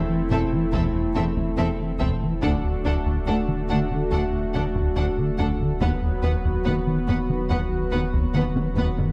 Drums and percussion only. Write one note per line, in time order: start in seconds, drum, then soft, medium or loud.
0.74 taiko medium
1.37 taiko medium
2.01 taiko medium
2.43 taiko medium
3.06 taiko medium
3.48 taiko mid medium
3.91 taiko mid soft
4.12 taiko medium
4.75 taiko medium
5.39 taiko medium
5.61 taiko mid soft
5.81 taiko medium
6.45 taiko medium
6.87 taiko mid soft
7.29 taiko mid soft
7.50 taiko medium
8.13 taiko medium
8.35 taiko mid medium
8.56 taiko high medium
8.78 taiko high medium
8.98 taiko low medium